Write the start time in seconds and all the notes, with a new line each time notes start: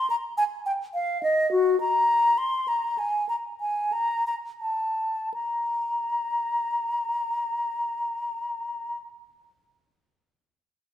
0.10 A#5
0.37 G#5
0.66 G5
0.94 F5
1.23 D#5
1.52 F#4
1.80 A#5
2.38 C6
2.68 A#5
2.98 G#5
3.29 A#5
3.60 G#5
3.93 A#5
4.27 A#5
4.60 A5
5.34 A#5